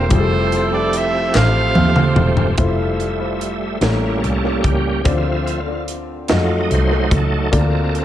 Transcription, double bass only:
0, 0, Header, 1, 2, 480
1, 0, Start_track
1, 0, Key_signature, -1, "major"
1, 0, Tempo, 824176
1, 66, Time_signature, 6, 3, 24, 8
1, 4686, End_track
2, 0, Start_track
2, 0, Title_t, "Double bass"
2, 0, Program_c, 0, 43
2, 64, Note_on_c, 0, 29, 103
2, 762, Note_off_c, 0, 29, 0
2, 786, Note_on_c, 0, 33, 86
2, 1007, Note_off_c, 0, 33, 0
2, 1024, Note_on_c, 0, 39, 72
2, 1246, Note_off_c, 0, 39, 0
2, 1260, Note_on_c, 0, 28, 77
2, 1484, Note_off_c, 0, 28, 0
2, 1501, Note_on_c, 0, 29, 83
2, 2201, Note_off_c, 0, 29, 0
2, 2221, Note_on_c, 0, 33, 89
2, 2445, Note_off_c, 0, 33, 0
2, 2459, Note_on_c, 0, 36, 73
2, 2683, Note_off_c, 0, 36, 0
2, 2703, Note_on_c, 0, 37, 76
2, 2925, Note_off_c, 0, 37, 0
2, 2946, Note_on_c, 0, 38, 87
2, 3643, Note_off_c, 0, 38, 0
2, 3670, Note_on_c, 0, 41, 78
2, 3889, Note_off_c, 0, 41, 0
2, 3905, Note_on_c, 0, 36, 80
2, 4127, Note_off_c, 0, 36, 0
2, 4143, Note_on_c, 0, 37, 82
2, 4366, Note_off_c, 0, 37, 0
2, 4384, Note_on_c, 0, 38, 100
2, 4686, Note_off_c, 0, 38, 0
2, 4686, End_track
0, 0, End_of_file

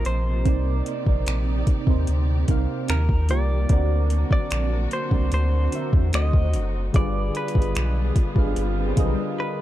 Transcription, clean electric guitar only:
0, 0, Header, 1, 2, 480
1, 0, Start_track
1, 0, Key_signature, -3, "minor"
1, 0, Tempo, 810811
1, 270, Time_signature, 4, 2, 24, 8
1, 5693, End_track
2, 0, Start_track
2, 0, Title_t, "Clean electric guitar"
2, 0, Program_c, 0, 27
2, 37, Note_on_c, 0, 72, 84
2, 490, Note_off_c, 0, 72, 0
2, 1718, Note_on_c, 0, 70, 74
2, 1937, Note_off_c, 0, 70, 0
2, 1958, Note_on_c, 0, 74, 94
2, 2554, Note_off_c, 0, 74, 0
2, 2561, Note_on_c, 0, 74, 93
2, 2892, Note_off_c, 0, 74, 0
2, 2920, Note_on_c, 0, 72, 92
2, 3139, Note_off_c, 0, 72, 0
2, 3161, Note_on_c, 0, 72, 102
2, 3612, Note_off_c, 0, 72, 0
2, 3641, Note_on_c, 0, 75, 106
2, 4117, Note_off_c, 0, 75, 0
2, 4120, Note_on_c, 0, 74, 103
2, 4359, Note_off_c, 0, 74, 0
2, 4361, Note_on_c, 0, 71, 89
2, 5292, Note_off_c, 0, 71, 0
2, 5565, Note_on_c, 0, 71, 81
2, 5693, Note_off_c, 0, 71, 0
2, 5693, End_track
0, 0, End_of_file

